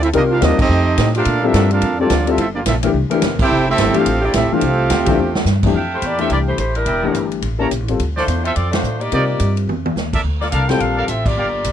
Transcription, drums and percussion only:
0.03 ride
0.13 kick, ride
0.42 kick, snare, hi-hat pedal, ride
0.59 kick, crash
0.98 kick, snare, hi-hat pedal, ride
1.15 ride
1.25 kick, ride
1.54 kick, snare, hi-hat pedal, ride
1.71 ride
1.82 kick, ride
2.10 kick, snare, hi-hat pedal, ride
2.27 ride
2.38 kick, ride
2.66 kick, snare, hi-hat pedal, ride
2.83 ride
2.94 kick
3.11 ride
3.22 kick, snare, hi-hat pedal, ride
3.39 kick, crash
3.78 kick, snare, hi-hat pedal, ride
3.94 ride
4.06 kick, ride
4.34 kick, snare, hi-hat pedal, ride
4.61 kick, ride
4.90 kick, snare, hi-hat pedal, ride
5.06 kick, ride
5.35 snare
5.46 snare, hi-hat pedal
5.63 kick, crash
5.74 kick
6.02 kick, hi-hat pedal, ride
6.18 ride
6.30 kick, ride
6.58 kick, hi-hat pedal, ride
6.75 ride
6.86 kick, ride
7.15 kick, hi-hat pedal, ride
7.32 ride
7.42 kick, ride
7.71 kick, hi-hat pedal, ride
7.88 ride
8.00 kick, ride
8.17 snare
8.28 kick, hi-hat pedal, ride
8.45 ride
8.56 kick, ride
8.73 snare, ride
8.84 hi-hat pedal
9.01 ride
9.12 kick, ride
9.40 kick, hi-hat pedal, ride
9.57 ride
9.69 high tom
9.86 high tom
9.96 snare, hi-hat pedal
10.13 kick, crash
10.24 kick
10.41 snare
10.52 kick, hi-hat pedal, ride
10.69 snare, ride
10.80 kick, ride
11.08 kick, hi-hat pedal, ride
11.26 kick, crash
11.64 kick, hi-hat pedal, ride

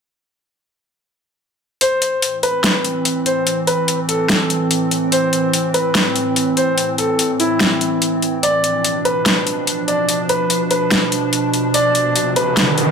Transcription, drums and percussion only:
1.81 closed hi-hat
2.02 closed hi-hat
2.22 closed hi-hat
2.43 closed hi-hat
2.64 snare, closed hi-hat
2.85 closed hi-hat
3.05 closed hi-hat
3.26 closed hi-hat
3.47 closed hi-hat
3.67 closed hi-hat
3.88 closed hi-hat
4.09 closed hi-hat
4.29 snare, closed hi-hat
4.50 closed hi-hat
4.71 closed hi-hat
4.91 closed hi-hat
5.12 closed hi-hat
5.33 closed hi-hat
5.53 closed hi-hat
5.74 closed hi-hat
5.95 snare, closed hi-hat
6.16 closed hi-hat
6.36 closed hi-hat
6.57 closed hi-hat
6.78 closed hi-hat
6.98 closed hi-hat
7.19 closed hi-hat
7.40 closed hi-hat
7.60 snare, closed hi-hat
7.81 closed hi-hat
8.02 closed hi-hat
8.22 closed hi-hat
8.43 closed hi-hat
8.64 closed hi-hat
8.84 closed hi-hat
9.05 closed hi-hat
9.26 snare, closed hi-hat
9.47 closed hi-hat
9.67 closed hi-hat
9.88 closed hi-hat
10.09 closed hi-hat
10.29 closed hi-hat
10.50 closed hi-hat
10.71 closed hi-hat
10.91 snare, closed hi-hat
11.12 closed hi-hat
11.33 closed hi-hat
11.54 closed hi-hat
11.74 closed hi-hat
11.95 closed hi-hat
12.16 closed hi-hat
12.36 closed hi-hat
12.57 snare, closed hi-hat
12.78 closed hi-hat

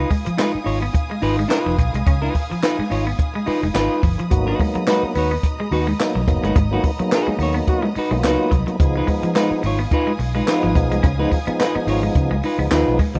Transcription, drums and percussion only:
0.11 kick, open hi-hat
0.26 closed hi-hat
0.38 snare, clap, closed hi-hat
0.66 open hi-hat
0.94 kick, closed hi-hat
1.22 open hi-hat
1.51 snare, clap, closed hi-hat
1.79 kick, closed hi-hat
1.94 closed hi-hat
2.06 kick, closed hi-hat
2.35 kick, open hi-hat
2.63 snare, clap, closed hi-hat
2.91 open hi-hat
3.19 kick, closed hi-hat
3.47 open hi-hat
3.75 snare, clap, closed hi-hat
4.03 kick, open hi-hat
4.19 closed hi-hat
4.31 kick, closed hi-hat
4.59 kick, open hi-hat
4.75 closed hi-hat
4.87 snare, clap, closed hi-hat
5.15 open hi-hat
5.43 kick, closed hi-hat
5.72 open hi-hat
6.00 snare, clap, closed hi-hat
6.28 kick, closed hi-hat
6.44 closed hi-hat
6.56 kick, closed hi-hat
6.84 kick, open hi-hat
6.99 closed hi-hat
7.12 snare, clap, closed hi-hat
7.40 open hi-hat
7.67 kick, closed hi-hat
7.96 open hi-hat
8.24 snare, clap, closed hi-hat
8.52 kick, closed hi-hat
8.68 closed hi-hat
8.80 kick, closed hi-hat
9.08 kick, open hi-hat
9.23 closed hi-hat
9.35 snare, clap, closed hi-hat
9.63 open hi-hat
9.91 kick, closed hi-hat
10.19 open hi-hat
10.48 snare, clap, closed hi-hat
10.75 kick, closed hi-hat
10.92 closed hi-hat
11.04 kick, closed hi-hat
11.32 kick, open hi-hat
11.47 closed hi-hat
11.60 snare, clap, closed hi-hat
11.88 open hi-hat
12.15 kick, closed hi-hat
12.43 open hi-hat
12.71 snare, clap, closed hi-hat
12.99 kick, open hi-hat
13.15 closed hi-hat

